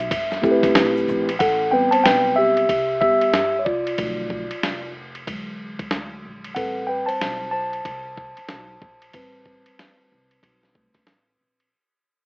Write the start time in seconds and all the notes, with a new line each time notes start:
Already playing: E5
0.00 ride
0.11 G1, kick, ride, shaker
0.31 snare, shaker
0.42 A3 C4 E4 G4 A4, kick, shaker
0.51 B4
0.63 muted upright bass stroke, kick, snare, ride, high conga, shaker
0.75 B1, snare, hi-hat pedal, ride, shaker
0.97 shaker
1.08 A#1, high conga, low conga, shaker
1.29 ride, shaker
1.39 A1 A4 F#5, kick, ride
1.71 G3 B3 C4 B4 G5
1.91 C5 A5, muted upright bass stroke, ride
2.04 B1 B4 G5, snare, hi-hat pedal, ride
2.36 G4 E5
2.57 ride
2.69 C2, kick, ride
3.01 C3 G3 B3 G4 E5, kick
3.21 muted upright bass stroke, ride
3.34 G2, snare, hi-hat pedal, ride
3.59 C#5
3.65 C2 F4 D5, kick
3.87 ride
3.98 B1 D3 F3 A3, kick, ride
4.30 kick
4.51 muted upright bass stroke, ride
4.63 F1, snare, hi-hat pedal, ride
5.15 ride
5.27 E2 D3 F#3 G#3, kick, ride
5.79 muted upright bass stroke, kick, ride
5.91 D2, snare, hi-hat pedal, ride
6.25 A#1
6.44 ride
6.55 A1 G3 C4 A4 B4 F#5, kick, ride
6.87 B4 G5
7.06 C5 A5, muted upright bass stroke, ride
7.21 B1, snare, hi-hat pedal, ride
7.51 C5 A5
7.73 ride
7.85 C2, kick, ride
8.17 kick
8.37 muted upright bass stroke, ride
8.49 B1, snare, hi-hat pedal, ride
8.82 A#1, kick
9.02 ride
9.13 A1 G3 C4 B4, kick, ride
9.46 kick
9.66 muted upright bass stroke, ride
9.79 D2, snare, hi-hat pedal, ride
10.12 C2
10.31 ride
10.43 B1, kick, ride
10.63 snare
10.75 C3 G3 A3, kick
10.94 muted upright bass stroke, kick, snare, ride
11.07 A1, snare, hi-hat pedal, ride
11.41 A#1
11.60 ride